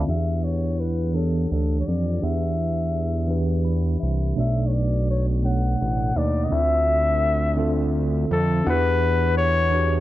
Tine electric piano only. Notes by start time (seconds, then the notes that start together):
Already playing: D5 F5
0.07 E3 D4 F#4
0.15 G4
1.13 E3 D4 G4 C#5
2.20 E3 D4 G4 F#5
3.27 E3 D4 G4 B4
3.65 B5
4.00 E5
4.35 B2 A3 D4 D5
5.42 B2 A3 D4 C#5
6.49 D3 C4 E4 E5
6.58 F4
7.56 D3 C4 F4 A4
8.63 E3 D4 F#4 F#5
8.72 G4
9.70 E3 D4 F#4 B4
9.79 G4